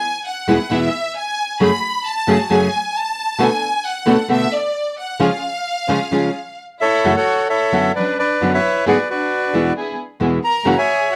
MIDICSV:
0, 0, Header, 1, 5, 480
1, 0, Start_track
1, 0, Key_signature, 3, "minor"
1, 0, Tempo, 449775
1, 1720, Time_signature, 4, 2, 24, 8
1, 5067, Tempo, 458015
1, 9387, Tempo, 448766
1, 11832, End_track
2, 0, Start_track
2, 0, Title_t, "Violin section"
2, 0, Program_c, 0, 48
2, 0, Note_on_c, 0, 80, 93
2, 240, Note_off_c, 0, 80, 0
2, 278, Note_on_c, 0, 78, 81
2, 762, Note_off_c, 0, 78, 0
2, 773, Note_on_c, 0, 76, 89
2, 1247, Note_off_c, 0, 76, 0
2, 1250, Note_on_c, 0, 80, 92
2, 1692, Note_off_c, 0, 80, 0
2, 1713, Note_on_c, 0, 83, 104
2, 2162, Note_off_c, 0, 83, 0
2, 2195, Note_on_c, 0, 81, 96
2, 2667, Note_on_c, 0, 80, 95
2, 2674, Note_off_c, 0, 81, 0
2, 3147, Note_on_c, 0, 81, 96
2, 3148, Note_off_c, 0, 80, 0
2, 3626, Note_off_c, 0, 81, 0
2, 3628, Note_on_c, 0, 80, 100
2, 4106, Note_off_c, 0, 80, 0
2, 4107, Note_on_c, 0, 78, 85
2, 4585, Note_off_c, 0, 78, 0
2, 4592, Note_on_c, 0, 76, 92
2, 4811, Note_off_c, 0, 76, 0
2, 4832, Note_on_c, 0, 74, 85
2, 5308, Note_off_c, 0, 74, 0
2, 5313, Note_on_c, 0, 78, 80
2, 5531, Note_off_c, 0, 78, 0
2, 5555, Note_on_c, 0, 77, 90
2, 6996, Note_off_c, 0, 77, 0
2, 7230, Note_on_c, 0, 64, 79
2, 7568, Note_off_c, 0, 64, 0
2, 7588, Note_on_c, 0, 66, 68
2, 7925, Note_off_c, 0, 66, 0
2, 7947, Note_on_c, 0, 64, 68
2, 8394, Note_off_c, 0, 64, 0
2, 8427, Note_on_c, 0, 62, 66
2, 8650, Note_off_c, 0, 62, 0
2, 8670, Note_on_c, 0, 62, 69
2, 9003, Note_off_c, 0, 62, 0
2, 9029, Note_on_c, 0, 64, 66
2, 9360, Note_off_c, 0, 64, 0
2, 9392, Note_on_c, 0, 66, 69
2, 9499, Note_off_c, 0, 66, 0
2, 9631, Note_on_c, 0, 62, 58
2, 10307, Note_off_c, 0, 62, 0
2, 11075, Note_on_c, 0, 70, 82
2, 11324, Note_off_c, 0, 70, 0
2, 11337, Note_on_c, 0, 70, 56
2, 11413, Note_off_c, 0, 70, 0
2, 11427, Note_on_c, 0, 68, 80
2, 11760, Note_off_c, 0, 68, 0
2, 11782, Note_on_c, 0, 66, 72
2, 11832, Note_off_c, 0, 66, 0
2, 11832, End_track
3, 0, Start_track
3, 0, Title_t, "Bandoneon"
3, 0, Program_c, 1, 23
3, 7225, Note_on_c, 1, 76, 94
3, 7235, Note_on_c, 1, 69, 62
3, 7238, Note_on_c, 1, 73, 62
3, 7565, Note_off_c, 1, 76, 0
3, 7591, Note_off_c, 1, 73, 0
3, 7593, Note_off_c, 1, 69, 0
3, 7598, Note_on_c, 1, 78, 87
3, 7607, Note_on_c, 1, 73, 66
3, 7608, Note_on_c, 1, 69, 62
3, 7928, Note_off_c, 1, 73, 0
3, 7931, Note_off_c, 1, 78, 0
3, 7933, Note_off_c, 1, 69, 0
3, 7944, Note_on_c, 1, 73, 58
3, 7946, Note_on_c, 1, 76, 83
3, 7948, Note_on_c, 1, 69, 54
3, 8392, Note_off_c, 1, 73, 0
3, 8394, Note_off_c, 1, 76, 0
3, 8395, Note_off_c, 1, 69, 0
3, 8430, Note_on_c, 1, 71, 55
3, 8431, Note_on_c, 1, 74, 70
3, 8653, Note_off_c, 1, 74, 0
3, 8663, Note_off_c, 1, 71, 0
3, 8673, Note_on_c, 1, 74, 80
3, 8679, Note_on_c, 1, 71, 56
3, 9004, Note_off_c, 1, 74, 0
3, 9026, Note_off_c, 1, 71, 0
3, 9042, Note_on_c, 1, 71, 57
3, 9042, Note_on_c, 1, 73, 59
3, 9042, Note_on_c, 1, 76, 84
3, 9367, Note_off_c, 1, 71, 0
3, 9367, Note_off_c, 1, 73, 0
3, 9367, Note_off_c, 1, 76, 0
3, 9393, Note_on_c, 1, 71, 59
3, 9396, Note_on_c, 1, 74, 61
3, 9398, Note_on_c, 1, 78, 81
3, 9503, Note_off_c, 1, 78, 0
3, 9615, Note_off_c, 1, 71, 0
3, 9629, Note_off_c, 1, 74, 0
3, 9631, Note_on_c, 1, 71, 50
3, 9634, Note_on_c, 1, 66, 51
3, 9645, Note_on_c, 1, 74, 71
3, 10307, Note_off_c, 1, 71, 0
3, 10308, Note_off_c, 1, 66, 0
3, 10314, Note_off_c, 1, 74, 0
3, 11066, Note_on_c, 1, 82, 97
3, 11332, Note_off_c, 1, 82, 0
3, 11357, Note_on_c, 1, 82, 65
3, 11428, Note_off_c, 1, 82, 0
3, 11431, Note_on_c, 1, 80, 90
3, 11432, Note_on_c, 1, 76, 70
3, 11436, Note_on_c, 1, 73, 70
3, 11763, Note_off_c, 1, 80, 0
3, 11795, Note_on_c, 1, 78, 82
3, 11832, Note_off_c, 1, 73, 0
3, 11832, Note_off_c, 1, 76, 0
3, 11832, Note_off_c, 1, 78, 0
3, 11832, End_track
4, 0, Start_track
4, 0, Title_t, "String section"
4, 0, Program_c, 2, 48
4, 517, Note_on_c, 2, 59, 68
4, 519, Note_on_c, 2, 64, 66
4, 520, Note_on_c, 2, 68, 69
4, 721, Note_off_c, 2, 59, 0
4, 722, Note_off_c, 2, 64, 0
4, 722, Note_off_c, 2, 68, 0
4, 753, Note_on_c, 2, 59, 45
4, 753, Note_on_c, 2, 64, 42
4, 758, Note_on_c, 2, 68, 54
4, 958, Note_off_c, 2, 59, 0
4, 959, Note_off_c, 2, 64, 0
4, 961, Note_off_c, 2, 68, 0
4, 1715, Note_on_c, 2, 57, 73
4, 1719, Note_on_c, 2, 66, 67
4, 1719, Note_on_c, 2, 68, 77
4, 1919, Note_off_c, 2, 57, 0
4, 1921, Note_off_c, 2, 66, 0
4, 1921, Note_off_c, 2, 68, 0
4, 2437, Note_on_c, 2, 57, 73
4, 2438, Note_on_c, 2, 66, 67
4, 2443, Note_on_c, 2, 68, 82
4, 2638, Note_off_c, 2, 57, 0
4, 2638, Note_off_c, 2, 66, 0
4, 2641, Note_off_c, 2, 68, 0
4, 2669, Note_on_c, 2, 66, 46
4, 2670, Note_on_c, 2, 57, 52
4, 2671, Note_on_c, 2, 68, 54
4, 2873, Note_off_c, 2, 57, 0
4, 2873, Note_off_c, 2, 66, 0
4, 2874, Note_off_c, 2, 68, 0
4, 3627, Note_on_c, 2, 59, 79
4, 3627, Note_on_c, 2, 69, 84
4, 3628, Note_on_c, 2, 62, 68
4, 3828, Note_off_c, 2, 59, 0
4, 3828, Note_off_c, 2, 69, 0
4, 3829, Note_off_c, 2, 62, 0
4, 4350, Note_on_c, 2, 59, 73
4, 4350, Note_on_c, 2, 62, 66
4, 4355, Note_on_c, 2, 69, 80
4, 4549, Note_off_c, 2, 59, 0
4, 4549, Note_off_c, 2, 62, 0
4, 4551, Note_off_c, 2, 69, 0
4, 4585, Note_on_c, 2, 59, 49
4, 4590, Note_on_c, 2, 62, 45
4, 4590, Note_on_c, 2, 69, 58
4, 4786, Note_off_c, 2, 59, 0
4, 4788, Note_off_c, 2, 62, 0
4, 4788, Note_off_c, 2, 69, 0
4, 5539, Note_on_c, 2, 61, 74
4, 5543, Note_on_c, 2, 65, 69
4, 5547, Note_on_c, 2, 68, 77
4, 5741, Note_off_c, 2, 61, 0
4, 5743, Note_off_c, 2, 65, 0
4, 5745, Note_off_c, 2, 68, 0
4, 6255, Note_on_c, 2, 61, 65
4, 6258, Note_on_c, 2, 65, 66
4, 6263, Note_on_c, 2, 68, 81
4, 6461, Note_off_c, 2, 61, 0
4, 6462, Note_off_c, 2, 65, 0
4, 6465, Note_off_c, 2, 68, 0
4, 6499, Note_on_c, 2, 61, 50
4, 6502, Note_on_c, 2, 65, 43
4, 6506, Note_on_c, 2, 68, 51
4, 6704, Note_off_c, 2, 61, 0
4, 6706, Note_off_c, 2, 65, 0
4, 6708, Note_off_c, 2, 68, 0
4, 7475, Note_on_c, 2, 64, 66
4, 7476, Note_on_c, 2, 66, 60
4, 7480, Note_on_c, 2, 69, 72
4, 7677, Note_off_c, 2, 64, 0
4, 7677, Note_off_c, 2, 66, 0
4, 7679, Note_off_c, 2, 69, 0
4, 8191, Note_on_c, 2, 64, 39
4, 8194, Note_on_c, 2, 66, 39
4, 8197, Note_on_c, 2, 69, 45
4, 8392, Note_off_c, 2, 64, 0
4, 8394, Note_off_c, 2, 66, 0
4, 8395, Note_off_c, 2, 69, 0
4, 8430, Note_on_c, 2, 54, 72
4, 8430, Note_on_c, 2, 61, 62
4, 8433, Note_on_c, 2, 62, 65
4, 8433, Note_on_c, 2, 71, 78
4, 8630, Note_off_c, 2, 54, 0
4, 8631, Note_off_c, 2, 61, 0
4, 8632, Note_off_c, 2, 62, 0
4, 8632, Note_off_c, 2, 71, 0
4, 8911, Note_on_c, 2, 62, 41
4, 8912, Note_on_c, 2, 54, 43
4, 8912, Note_on_c, 2, 61, 39
4, 8916, Note_on_c, 2, 71, 46
4, 9110, Note_off_c, 2, 61, 0
4, 9110, Note_off_c, 2, 62, 0
4, 9111, Note_off_c, 2, 54, 0
4, 9112, Note_off_c, 2, 71, 0
4, 9384, Note_on_c, 2, 59, 65
4, 9385, Note_on_c, 2, 66, 63
4, 9388, Note_on_c, 2, 68, 76
4, 9587, Note_off_c, 2, 59, 0
4, 9587, Note_off_c, 2, 66, 0
4, 9589, Note_off_c, 2, 68, 0
4, 10107, Note_on_c, 2, 59, 44
4, 10110, Note_on_c, 2, 66, 40
4, 10110, Note_on_c, 2, 68, 48
4, 10309, Note_off_c, 2, 59, 0
4, 10310, Note_off_c, 2, 66, 0
4, 10310, Note_off_c, 2, 68, 0
4, 10343, Note_on_c, 2, 59, 69
4, 10346, Note_on_c, 2, 64, 67
4, 10346, Note_on_c, 2, 68, 77
4, 10547, Note_off_c, 2, 59, 0
4, 10549, Note_off_c, 2, 64, 0
4, 10549, Note_off_c, 2, 68, 0
4, 10826, Note_on_c, 2, 59, 49
4, 10827, Note_on_c, 2, 64, 45
4, 10832, Note_on_c, 2, 68, 52
4, 11029, Note_off_c, 2, 59, 0
4, 11029, Note_off_c, 2, 64, 0
4, 11031, Note_off_c, 2, 68, 0
4, 11300, Note_on_c, 2, 58, 77
4, 11304, Note_on_c, 2, 64, 67
4, 11304, Note_on_c, 2, 66, 83
4, 11504, Note_off_c, 2, 58, 0
4, 11506, Note_off_c, 2, 64, 0
4, 11506, Note_off_c, 2, 66, 0
4, 11832, End_track
5, 0, Start_track
5, 0, Title_t, "Nylon-string guitar"
5, 0, Program_c, 3, 24
5, 507, Note_on_c, 3, 40, 80
5, 509, Note_on_c, 3, 47, 75
5, 515, Note_on_c, 3, 56, 80
5, 517, Note_on_c, 3, 52, 78
5, 520, Note_on_c, 3, 59, 85
5, 520, Note_on_c, 3, 64, 88
5, 609, Note_off_c, 3, 40, 0
5, 609, Note_off_c, 3, 47, 0
5, 612, Note_off_c, 3, 56, 0
5, 614, Note_off_c, 3, 52, 0
5, 615, Note_off_c, 3, 59, 0
5, 615, Note_off_c, 3, 64, 0
5, 745, Note_on_c, 3, 40, 64
5, 754, Note_on_c, 3, 47, 61
5, 756, Note_on_c, 3, 52, 65
5, 759, Note_on_c, 3, 56, 64
5, 763, Note_on_c, 3, 59, 69
5, 763, Note_on_c, 3, 64, 76
5, 932, Note_off_c, 3, 40, 0
5, 937, Note_off_c, 3, 47, 0
5, 938, Note_off_c, 3, 52, 0
5, 939, Note_off_c, 3, 56, 0
5, 941, Note_off_c, 3, 64, 0
5, 942, Note_off_c, 3, 59, 0
5, 1709, Note_on_c, 3, 49, 75
5, 1711, Note_on_c, 3, 42, 76
5, 1713, Note_on_c, 3, 54, 76
5, 1719, Note_on_c, 3, 57, 73
5, 1720, Note_on_c, 3, 68, 87
5, 1721, Note_on_c, 3, 61, 80
5, 1810, Note_off_c, 3, 49, 0
5, 1811, Note_off_c, 3, 42, 0
5, 1812, Note_off_c, 3, 54, 0
5, 1815, Note_off_c, 3, 57, 0
5, 1816, Note_off_c, 3, 61, 0
5, 1816, Note_off_c, 3, 68, 0
5, 2423, Note_on_c, 3, 42, 72
5, 2428, Note_on_c, 3, 49, 85
5, 2429, Note_on_c, 3, 54, 89
5, 2432, Note_on_c, 3, 57, 78
5, 2433, Note_on_c, 3, 61, 79
5, 2439, Note_on_c, 3, 68, 85
5, 2525, Note_off_c, 3, 42, 0
5, 2527, Note_off_c, 3, 49, 0
5, 2528, Note_off_c, 3, 54, 0
5, 2529, Note_off_c, 3, 57, 0
5, 2530, Note_off_c, 3, 61, 0
5, 2533, Note_off_c, 3, 68, 0
5, 2666, Note_on_c, 3, 42, 65
5, 2668, Note_on_c, 3, 49, 64
5, 2673, Note_on_c, 3, 54, 74
5, 2678, Note_on_c, 3, 57, 69
5, 2679, Note_on_c, 3, 61, 68
5, 2683, Note_on_c, 3, 68, 70
5, 2850, Note_off_c, 3, 42, 0
5, 2850, Note_off_c, 3, 49, 0
5, 2853, Note_off_c, 3, 54, 0
5, 2855, Note_off_c, 3, 57, 0
5, 2856, Note_off_c, 3, 61, 0
5, 2858, Note_off_c, 3, 68, 0
5, 3613, Note_on_c, 3, 47, 80
5, 3621, Note_on_c, 3, 50, 86
5, 3622, Note_on_c, 3, 57, 82
5, 3627, Note_on_c, 3, 59, 89
5, 3629, Note_on_c, 3, 66, 85
5, 3716, Note_off_c, 3, 47, 0
5, 3719, Note_off_c, 3, 50, 0
5, 3720, Note_off_c, 3, 57, 0
5, 3723, Note_off_c, 3, 59, 0
5, 3724, Note_off_c, 3, 66, 0
5, 4330, Note_on_c, 3, 47, 90
5, 4334, Note_on_c, 3, 50, 90
5, 4337, Note_on_c, 3, 57, 87
5, 4339, Note_on_c, 3, 59, 83
5, 4343, Note_on_c, 3, 66, 89
5, 4433, Note_off_c, 3, 47, 0
5, 4435, Note_off_c, 3, 50, 0
5, 4436, Note_off_c, 3, 57, 0
5, 4437, Note_off_c, 3, 59, 0
5, 4439, Note_off_c, 3, 66, 0
5, 4573, Note_on_c, 3, 47, 68
5, 4579, Note_on_c, 3, 50, 70
5, 4583, Note_on_c, 3, 57, 74
5, 4586, Note_on_c, 3, 59, 78
5, 4588, Note_on_c, 3, 66, 76
5, 4758, Note_off_c, 3, 47, 0
5, 4761, Note_off_c, 3, 50, 0
5, 4763, Note_off_c, 3, 57, 0
5, 4765, Note_off_c, 3, 59, 0
5, 4765, Note_off_c, 3, 66, 0
5, 5535, Note_on_c, 3, 49, 72
5, 5538, Note_on_c, 3, 53, 83
5, 5543, Note_on_c, 3, 56, 85
5, 5543, Note_on_c, 3, 61, 89
5, 5545, Note_on_c, 3, 65, 94
5, 5633, Note_off_c, 3, 49, 0
5, 5635, Note_off_c, 3, 53, 0
5, 5637, Note_off_c, 3, 56, 0
5, 5637, Note_off_c, 3, 61, 0
5, 5638, Note_off_c, 3, 65, 0
5, 6261, Note_on_c, 3, 49, 81
5, 6261, Note_on_c, 3, 53, 81
5, 6267, Note_on_c, 3, 56, 76
5, 6272, Note_on_c, 3, 61, 87
5, 6274, Note_on_c, 3, 65, 81
5, 6356, Note_off_c, 3, 49, 0
5, 6356, Note_off_c, 3, 53, 0
5, 6359, Note_off_c, 3, 56, 0
5, 6362, Note_off_c, 3, 61, 0
5, 6363, Note_off_c, 3, 65, 0
5, 6499, Note_on_c, 3, 49, 64
5, 6504, Note_on_c, 3, 53, 65
5, 6510, Note_on_c, 3, 61, 65
5, 6511, Note_on_c, 3, 56, 63
5, 6516, Note_on_c, 3, 65, 71
5, 6682, Note_off_c, 3, 49, 0
5, 6685, Note_off_c, 3, 53, 0
5, 6688, Note_off_c, 3, 56, 0
5, 6688, Note_off_c, 3, 61, 0
5, 6691, Note_off_c, 3, 65, 0
5, 7473, Note_on_c, 3, 49, 71
5, 7475, Note_on_c, 3, 42, 66
5, 7478, Note_on_c, 3, 52, 67
5, 7478, Note_on_c, 3, 57, 76
5, 7483, Note_on_c, 3, 61, 77
5, 7487, Note_on_c, 3, 66, 76
5, 7569, Note_off_c, 3, 49, 0
5, 7570, Note_off_c, 3, 42, 0
5, 7572, Note_off_c, 3, 52, 0
5, 7572, Note_off_c, 3, 57, 0
5, 7574, Note_off_c, 3, 61, 0
5, 7576, Note_off_c, 3, 66, 0
5, 8185, Note_on_c, 3, 42, 57
5, 8186, Note_on_c, 3, 50, 60
5, 8187, Note_on_c, 3, 54, 65
5, 8194, Note_on_c, 3, 59, 62
5, 8195, Note_on_c, 3, 61, 61
5, 8200, Note_on_c, 3, 66, 65
5, 8368, Note_off_c, 3, 42, 0
5, 8368, Note_off_c, 3, 50, 0
5, 8369, Note_off_c, 3, 54, 0
5, 8372, Note_off_c, 3, 59, 0
5, 8372, Note_off_c, 3, 61, 0
5, 8375, Note_off_c, 3, 66, 0
5, 8905, Note_on_c, 3, 42, 58
5, 8908, Note_on_c, 3, 50, 63
5, 8912, Note_on_c, 3, 54, 67
5, 8914, Note_on_c, 3, 59, 67
5, 8920, Note_on_c, 3, 66, 70
5, 8921, Note_on_c, 3, 61, 67
5, 9085, Note_off_c, 3, 42, 0
5, 9087, Note_off_c, 3, 50, 0
5, 9089, Note_off_c, 3, 54, 0
5, 9090, Note_off_c, 3, 59, 0
5, 9093, Note_off_c, 3, 61, 0
5, 9093, Note_off_c, 3, 66, 0
5, 9379, Note_on_c, 3, 44, 74
5, 9380, Note_on_c, 3, 50, 71
5, 9385, Note_on_c, 3, 54, 81
5, 9388, Note_on_c, 3, 59, 83
5, 9392, Note_on_c, 3, 66, 82
5, 9393, Note_on_c, 3, 68, 84
5, 9478, Note_off_c, 3, 44, 0
5, 9478, Note_off_c, 3, 50, 0
5, 9480, Note_off_c, 3, 54, 0
5, 9482, Note_off_c, 3, 59, 0
5, 9484, Note_off_c, 3, 66, 0
5, 9485, Note_off_c, 3, 68, 0
5, 10097, Note_on_c, 3, 40, 60
5, 10100, Note_on_c, 3, 47, 58
5, 10105, Note_on_c, 3, 52, 65
5, 10108, Note_on_c, 3, 56, 67
5, 10109, Note_on_c, 3, 59, 63
5, 10112, Note_on_c, 3, 64, 65
5, 10282, Note_off_c, 3, 40, 0
5, 10283, Note_off_c, 3, 47, 0
5, 10286, Note_off_c, 3, 52, 0
5, 10287, Note_off_c, 3, 56, 0
5, 10288, Note_off_c, 3, 59, 0
5, 10289, Note_off_c, 3, 64, 0
5, 10807, Note_on_c, 3, 40, 62
5, 10812, Note_on_c, 3, 47, 67
5, 10815, Note_on_c, 3, 52, 65
5, 10816, Note_on_c, 3, 56, 66
5, 10822, Note_on_c, 3, 59, 66
5, 10825, Note_on_c, 3, 64, 74
5, 10997, Note_off_c, 3, 40, 0
5, 10999, Note_off_c, 3, 47, 0
5, 11001, Note_off_c, 3, 52, 0
5, 11001, Note_off_c, 3, 56, 0
5, 11004, Note_off_c, 3, 59, 0
5, 11006, Note_off_c, 3, 64, 0
5, 11290, Note_on_c, 3, 42, 77
5, 11294, Note_on_c, 3, 49, 74
5, 11296, Note_on_c, 3, 52, 76
5, 11299, Note_on_c, 3, 58, 84
5, 11302, Note_on_c, 3, 61, 81
5, 11307, Note_on_c, 3, 66, 85
5, 11393, Note_off_c, 3, 42, 0
5, 11395, Note_off_c, 3, 49, 0
5, 11396, Note_off_c, 3, 52, 0
5, 11397, Note_off_c, 3, 58, 0
5, 11399, Note_off_c, 3, 61, 0
5, 11402, Note_off_c, 3, 66, 0
5, 11832, End_track
0, 0, End_of_file